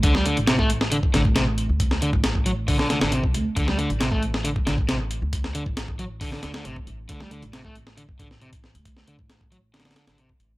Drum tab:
HH |x---x-x-x---x---x---x---x---x---|x---x---x---x---o---x---x---x---|x---x-x-x---x---x---x---x---x---|x---x---x---x---o---x---x---x---|
SD |--o-----o-----o-----o---o-------|--o-----o---------o-o-o---------|--o-----o-----o-----o---o-------|--o-----o---------o-o-o---------|
BD |o---------o-------o---o---------|o-----o---o-----o---------o-----|o---------o-------o---o---------|o-----o---o-----o---------o-----|

HH |x---x-x-x---x---x---x---x-x---x-|x---x---x---x---xxxxx-x-x---x---|
SD |--o-----o-----o-------o-----o---|--o-----o-------ooooo-o---------|
BD |o---------o-------o-o-----o-----|o-----o---o---------------o-----|